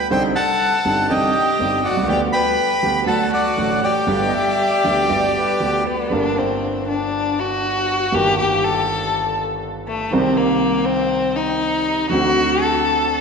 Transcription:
0.10 C2 C3 D3 G3 C4 D#4 C5 G5 C6
0.35 A4 F#5 A5
0.85 G1 G2 D3 G3 C4 D#4
1.10 C2 C3 D3 G3 C4 D#4 G4 D#5 G5
1.59 G1 G2 D3 G3 C4 D#4
1.85 F#4 D5 F#5
1.91 B1
1.97 C2
2.03 C#2
2.08 D2 D3 G3 B3 G4 D5 G5
2.32 B4 G5 B5
2.83 D2 D3 G3 B3 G4
3.06 D2 D3 F#3 A3 F#4 A4 F#5 A5
3.31 F#4 D5 F#5
3.57 A1 A2 D3 F#3 A3 F#4
3.82 G4 D5 G5
4.07 G1 G2 D3 G3 B3 G4
4.26 D#5
4.34 E5
4.84 D2 D3 G3 B3 G4
5.09 G1 G2 D3 G3 B3 G4 D5
5.36 B4
5.60 D2 D3 G3 B3 G4
5.87 B3 D5
6.10 G1 G2 D3 G3 A#3 D4
6.14 A#4
6.38 C4
6.88 D4
7.39 F#4
8.12 G1 G2 D#3 G3 A#3 G4
8.16 G4
8.40 G4
8.64 A4
9.88 A3
10.11 C2 C3 D#3 G3 C4
10.15 G4
10.37 A#3
10.85 C4
11.36 D#4
12.10 D2 D3 A3 C4 F#4
12.61 A4

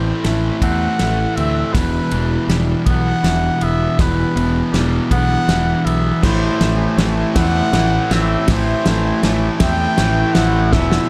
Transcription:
Already playing: A1 A2 E3 A3 C4 C5
0.24 A1 A2 E3 A3, snare, ride
0.61 E2 A2 E3 A3 C4 F#5, kick, ride
0.99 A1 A2 E3 A3, snare, ride
1.36 D2 C4 E5, ride
1.73 E1 E2 B2 E3 G3 B3 E4 B4, kick, snare, ride
2.11 E1 E2 B2 E3, ride
2.48 E1 E2 B2 E3 G3, snare, ride
2.86 B1 E2 B2 E3 B3, kick, ride
2.92 F#5
3.23 E1 E2 B2 E3, snare, ride
3.61 E1 B3 E5, ride
3.98 E1 E2 B2 E3 D4 B4, kick, snare, ride
4.36 E1 E2 B2 E3, ride
4.72 E1 E2 B2 E3 G3, snare, ride
5.11 B1 E2 B2 E3 B3 F#5, kick, ride
5.48 E1 E2 B2 E3, snare, ride
5.85 B1 B3 E5, ride
6.21 A1 A2 E3 A3 C4 E4 C5, kick, snare, crash
6.61 A1 A2 E3 A3, snare, ride
6.98 A1 A2 E3 A3, snare, ride
7.35 E2 A2 E3 A3 C4 F#5, kick, snare, ride
7.72 A1 A2 E3 A3, snare, ride
8.11 A1 C4 E5, snare, ride
8.48 A1 A2 E3 A3 C5, kick, snare, ride
8.86 A1 A2 E3 A3, snare, ride
9.23 A1 A2 E3 A3, snare, ride
9.60 E2 A2 E3 A3 C4 G5, kick, snare, ride
9.98 A1 A2 E3 A3, snare, ride
10.34 A1 C4 F#5, snare, ride
10.72 E1 E2 B2 E3 G3 B3 E4 E5, kick, snare
10.91 snare

